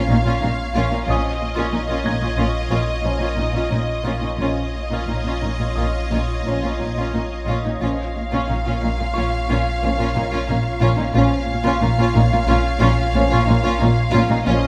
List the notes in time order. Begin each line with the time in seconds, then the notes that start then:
Already playing: A#1 F4 C#5 F5
0.09 A#1 A#2 C#4 D#4
0.26 A#2 C#4 F4
0.42 A#1 A#2 C#4 D#4
0.74 A#1 A#2 C#4 F4
0.91 A#2 C#4 D#4
1.07 A#1 A#2 F3 C#4 F4 C#5 D#5 D#6
1.40 A#2
1.56 A#2 C#4 F4
1.72 A#1 A#2 C#4 D#4
1.89 A#2 C#4 F4
2.05 A#1 A#2 C#4 D#4 G#6
2.21 A#2 C#4 F4
2.37 A#1 A#2 A#3 C#4 F4
2.70 A#1 A#2 C#4 F4
3.04 A#1 A#2 F3 A#3 C#4 F4
3.20 A#2 C#4 F4
3.37 A#1 A#2 C#4 D#4
3.53 A#2 C#4 F4
3.71 A#1 A#2 C#4 D#4
4.04 A#1 A#2 C#4 F4
4.22 A#2 C#4 D#4
4.39 A#1 A#2 F3 C#4 F4 C#5 D#5
4.74 A#2
4.91 A#2 C#4 F4
5.08 A#1 A#2 C#4 D#4
5.24 A#2 C#4 F4
5.42 A#1 A#2 C#4 D#4
5.59 A#2 C#4 F4
5.76 A#1 A#2 A#3 C#4 F4 D#6
6.10 A#1 A#2 C#4 F4
6.45 A#1 A#2 F3 A#3 C#4 F4
6.62 A#2 C#4 F4
6.80 A#1 A#2 C#4 D#4
6.96 A#2 C#4 F4
7.12 A#1 A#2 C#4 D#4
7.46 A#1 A#2 C#4 F4
7.65 A#2 C#4 D#4
7.80 A#1 A#2 F3 C#4 F4 C#5 F5
8.15 A#2
8.32 A#2 C#4 F4
8.49 A#1 A#2 C#4 D#4
8.65 A#2 C#4 F4
8.81 A#1 A#2 C#4 D#4
8.98 A#2 C#4 F4
9.14 A#1 A#2 A#3 C#4 F4 C#6
9.49 A#1 A#2 C#4 F4
9.82 A#1 A#2 F3 A#3 C#4 F4
9.98 A#2 C#4 F4
10.15 A#1 A#2 C#4 D#4
10.31 A#2 C#4 F4
10.48 A#1 A#2 C#4 D#4
10.81 A#1 A#2 C#4 F4
10.97 A#2 C#4 D#4
11.14 A#1 A#2 F3 C#4 F4 C#5 F5
11.49 A#2
11.64 A#2 C#4 F4
11.81 A#1 A#2 C#4 D#4
11.98 A#2 C#4 F4
12.15 A#1 A#2 C#4 D#4
12.32 A#2 C#4 F4
12.48 A#1 A#2 A#3 C#4 F4
12.80 A#1 A#2 C#4 F4
13.14 A#1 A#2 F3 A#3 C#4 F4
13.30 A#2 C#4 F4
13.47 A#1 A#2 C#4 D#4
13.62 A#2 C#4 F4
13.79 A#1 A#2 C#4 D#4
14.12 A#1 A#2 C#4 F4
14.30 A#2 C#4 D#4
14.46 A#1 A#2 F3 C#4 F4 C#5 D#5